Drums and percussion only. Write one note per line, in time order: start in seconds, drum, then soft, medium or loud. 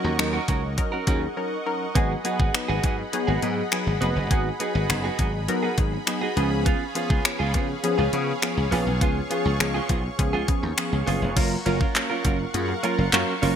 0.19 finger snap loud
0.19 closed hi-hat medium
0.48 kick medium
0.48 closed hi-hat medium
0.78 kick medium
0.78 closed hi-hat medium
1.07 kick loud
1.07 closed hi-hat medium
1.95 kick loud
1.95 closed hi-hat medium
2.25 closed hi-hat medium
2.40 kick loud
2.54 finger snap loud
2.54 closed hi-hat medium
2.84 kick medium
2.84 closed hi-hat medium
3.13 closed hi-hat medium
3.42 closed hi-hat medium
3.72 finger snap loud
3.72 closed hi-hat loud
4.02 closed hi-hat medium
4.31 kick loud
4.31 closed hi-hat medium
4.60 closed hi-hat medium
4.90 finger snap loud
4.90 closed hi-hat medium
5.19 kick medium
5.19 closed hi-hat medium
5.48 closed hi-hat medium
5.78 kick loud
5.78 closed hi-hat medium
6.07 finger snap loud
6.07 closed hi-hat loud
6.37 closed hi-hat medium
6.66 kick loud
6.66 closed hi-hat medium
6.95 closed hi-hat medium
7.10 kick loud
7.25 finger snap loud
7.25 closed hi-hat medium
7.54 kick medium
7.54 closed hi-hat medium
7.84 closed hi-hat loud
8.13 closed hi-hat medium
8.42 finger snap loud
8.42 closed hi-hat loud
8.72 open hi-hat medium
9.01 kick loud
9.01 closed hi-hat medium
9.31 closed hi-hat medium
9.60 finger snap loud
9.60 closed hi-hat medium
9.89 kick medium
9.89 closed hi-hat medium
10.19 kick loud
10.19 closed hi-hat loud
10.48 kick loud
10.48 closed hi-hat medium
10.78 finger snap loud
10.78 closed hi-hat loud
11.07 open hi-hat medium
11.37 kick loud
11.37 closed hi-hat loud
11.37 crash loud
11.66 closed hi-hat medium
11.81 kick loud
11.96 clap loud
11.96 closed hi-hat loud
12.25 kick medium
12.25 closed hi-hat medium
12.54 closed hi-hat loud
12.84 closed hi-hat medium
13.13 clap loud
13.13 closed hi-hat loud
13.43 open hi-hat medium